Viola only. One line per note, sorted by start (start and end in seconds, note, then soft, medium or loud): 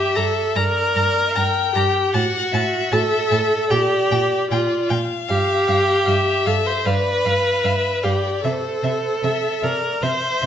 0.00 0.17 G4 medium
0.16 0.58 A4 medium
0.56 1.74 A#4 medium
1.75 2.16 G4 medium
2.14 2.94 F#4 medium
2.93 3.72 A4 loud
3.70 4.50 G4 medium
4.50 4.89 F4 medium
5.29 6.48 G4 medium
6.47 6.68 A4 medium
6.66 6.87 C5 medium
6.85 8.05 B4 medium
8.03 8.43 G4 medium
8.43 9.65 A4 medium
9.63 10.04 A#4 medium
10.02 10.46 C5 medium